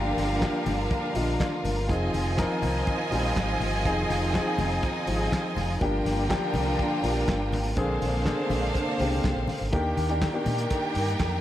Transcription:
Already playing: fingered electric bass G1, string section D3 G3 A#3 F4, grand piano F3 A#3 D4 E4 F4 G4, violin section D4 A#4 F5
0.17 fingered electric bass G1, snare, open hi-hat, muted conga, high conga
0.41 grand piano F3 A#3 D4 G4, kick, snare, clap, muted conga, high conga
0.66 fingered electric bass G1, grand piano G5, open hi-hat, muted conga, high conga, low conga
0.91 grand piano F5, kick, closed hi-hat
1.15 fingered electric bass A#1, grand piano F3 A#3 D4 F4 D#5, open hi-hat, muted conga, high conga
1.40 grand piano D5, kick, snare, clap, closed hi-hat, high conga
1.65 fingered electric bass G1, grand piano A#4, open hi-hat, muted conga, high conga, low conga
1.88 fingered electric bass F1, string section D#3 F3 C4, grand piano F3 C4 D#4 G#4, violin section F4 D#5 G#5, kick, closed hi-hat
2.14 fingered electric bass F1, open hi-hat, muted conga, high conga
2.37 grand piano F3 C4 D#4 A#4, kick, snare, clap, closed hi-hat, muted conga, high conga
2.62 fingered electric bass C2, open hi-hat, muted conga, high conga, low conga
2.87 kick, closed hi-hat, muted conga
3.11 fingered electric bass A#1, grand piano F3 G3 C4 D#4, open hi-hat, muted conga
3.36 fingered electric bass G#1, kick, snare, clap, closed hi-hat, muted conga, high conga
3.60 fingered electric bass G1, open hi-hat, high conga, low conga
3.85 fingered electric bass F1, grand piano F3 C4 D#4 G#4, string section D#4, kick, closed hi-hat
4.10 fingered electric bass F1, snare, open hi-hat, muted conga, high conga
4.34 grand piano F3 C4 D#4 G#4, kick, snare, clap, closed hi-hat, muted conga, high conga
4.58 fingered electric bass F1, open hi-hat, muted conga, high conga, low conga
4.83 kick, closed hi-hat, muted conga
5.07 fingered electric bass G#1, grand piano F3 C4 D#4 G4, open hi-hat
5.14 grand piano G#4
5.32 kick, snare, clap, closed hi-hat, muted conga, high conga
5.57 fingered electric bass F1, open hi-hat, muted conga, high conga, low conga
5.81 fingered electric bass G1, string section D3 G3 A#3 F4, grand piano F3 A#3 D4 G4, violin section D4 A#4 G5, kick, closed hi-hat, muted conga
6.05 fingered electric bass G1, snare, open hi-hat, high conga
6.29 grand piano F3 A#3 D4 G4, kick, snare, clap, closed hi-hat, muted conga, high conga
6.54 fingered electric bass C2, open hi-hat, muted conga, high conga, low conga
6.79 kick, closed hi-hat
7.03 fingered electric bass A#1, grand piano F3 A#3 D4 F4, open hi-hat, muted conga
7.11 grand piano G4
7.28 fingered electric bass G1, kick, snare, clap, closed hi-hat, muted conga, high conga
7.52 fingered electric bass G#1, open hi-hat, muted conga, high conga, low conga
7.76 fingered electric bass A#1, string section C3 G#3 A#3 D4, grand piano D3 A#3 C4 G#4, violin section D4 C5 F5, kick, closed hi-hat, muted conga
8.02 fingered electric bass A#1, open hi-hat, high conga
8.25 grand piano D3 A#3 C4 G#4, kick, snare, clap, closed hi-hat, muted conga, high conga
8.50 fingered electric bass A#1, open hi-hat, muted conga, high conga, low conga
8.75 kick, closed hi-hat, muted conga
8.99 fingered electric bass C2, grand piano C#3 A#3 C4 G4, open hi-hat, high conga
9.05 grand piano D3
9.24 fingered electric bass C2, kick, snare, clap, high conga
9.36 fingered electric bass A#1
9.48 open hi-hat, muted conga, high conga, low conga
9.61 fingered electric bass G#1
9.72 fingered electric bass D#2, grand piano D#3 A#3 D4 G4, string section D#3 A#3 D4 A#4, violin section G4 G5, kick, closed hi-hat, cowbell
9.97 fingered electric bass D#2, open hi-hat, muted conga, high conga
10.09 grand piano D#3 A#3 D4 G4, closed hi-hat
10.21 kick, snare, clap, closed hi-hat, cowbell, high conga
10.34 grand piano D#3 A#3 D4 G4
10.46 fingered electric bass A#2, open hi-hat, muted conga, high conga, low conga
10.58 closed hi-hat
10.70 kick, closed hi-hat, cowbell, muted conga
10.95 fingered electric bass G2, open hi-hat, muted conga
11.08 closed hi-hat
11.19 fingered electric bass F2, kick, snare, clap, closed hi-hat, cowbell, muted conga, high conga

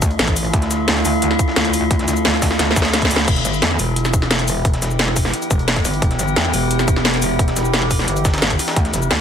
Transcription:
Already playing: synth drone D3 A3 E4 F4
0.02 wobble bass D2, kick, closed hi-hat, shaker
0.11 closed hi-hat
0.19 wobble bass A1, snare, closed hi-hat
0.28 kick, snare, closed hi-hat
0.36 closed hi-hat, open hi-hat, shaker
0.45 closed hi-hat
0.53 wobble bass D2, kick, closed hi-hat
0.62 snare, closed hi-hat
0.71 snare, closed hi-hat, shaker
0.88 snare, closed hi-hat
0.96 snare
1.05 wobble bass D2, closed hi-hat, open hi-hat, shaker
1.22 closed hi-hat
1.31 snare
1.39 kick, closed hi-hat, shaker
1.48 snare
1.56 wobble bass D2, snare, closed hi-hat
1.65 closed hi-hat
1.74 closed hi-hat, open hi-hat, shaker
1.91 kick, closed hi-hat
1.99 snare, closed hi-hat
2.08 wobble bass D2, snare, closed hi-hat, shaker
2.16 shaker
2.25 snare, closed hi-hat
2.34 snare
2.42 kick, snare, closed hi-hat, open hi-hat, shaker
2.51 snare
2.59 wobble bass D2, snare, closed hi-hat
2.71 snare
2.76 wobble bass D2, kick, snare, closed hi-hat, shaker
2.82 snare
2.85 snare, closed hi-hat
2.93 snare, closed hi-hat
3.02 kick, snare, closed hi-hat
3.11 closed hi-hat, open hi-hat, shaker
3.16 snare
3.19 snare, closed hi-hat
3.28 wobble bass E1, synth drone E3 B3 E4 G4, kick, closed hi-hat, crash
3.36 snare, closed hi-hat
3.45 wobble bass G1, snare, closed hi-hat, shaker
3.54 shaker
3.62 wobble bass E2, snare, closed hi-hat
3.71 snare
3.79 wobble bass E1, closed hi-hat, open hi-hat, shaker
3.96 closed hi-hat
4.05 snare, shaker
4.14 kick, closed hi-hat, shaker
4.22 snare
4.31 snare, closed hi-hat
4.39 closed hi-hat
4.48 closed hi-hat, open hi-hat, shaker
4.65 wobble bass E1, kick, closed hi-hat
4.74 snare, closed hi-hat
4.82 wobble bass E1, snare, closed hi-hat, shaker
4.91 shaker
4.99 snare, closed hi-hat
5.08 snare
5.16 kick, closed hi-hat, open hi-hat, shaker
5.25 snare
5.34 closed hi-hat
5.42 closed hi-hat, shaker
5.51 wobble bass E1, kick, closed hi-hat, shaker
5.59 closed hi-hat
5.68 snare, closed hi-hat
5.76 kick, snare, closed hi-hat
5.85 wobble bass G1, snare, closed hi-hat, open hi-hat, shaker
5.94 closed hi-hat
6.02 wobble bass E1, kick, closed hi-hat
6.11 snare, closed hi-hat
6.19 wobble bass G1, snare, closed hi-hat, shaker
6.28 shaker
6.36 wobble bass E2, snare, closed hi-hat
6.45 snare
6.54 wobble bass E1, closed hi-hat, open hi-hat, shaker
6.71 closed hi-hat
6.79 snare, shaker
6.88 kick, closed hi-hat, shaker
6.96 snare
7.05 snare, closed hi-hat
7.14 closed hi-hat
7.22 closed hi-hat, open hi-hat, shaker
7.39 wobble bass E1, kick, closed hi-hat
7.48 snare, closed hi-hat
7.56 wobble bass E1, snare, closed hi-hat, shaker
7.65 shaker
7.74 snare, closed hi-hat
7.82 snare
7.91 kick, closed hi-hat, open hi-hat, shaker
7.99 snare
8.08 wobble bass G1, closed hi-hat
8.16 closed hi-hat, shaker
8.25 kick, snare, closed hi-hat, shaker
8.34 snare, closed hi-hat
8.38 snare, closed hi-hat
8.42 snare, closed hi-hat
8.51 kick, closed hi-hat
8.59 snare, closed hi-hat, open hi-hat, shaker
8.68 snare, closed hi-hat
8.76 wobble bass D2, synth drone D3 A3 F4, kick, closed hi-hat
8.85 snare, closed hi-hat
8.94 wobble bass F1, snare, closed hi-hat, shaker
9.02 shaker
9.11 wobble bass D2, snare, closed hi-hat

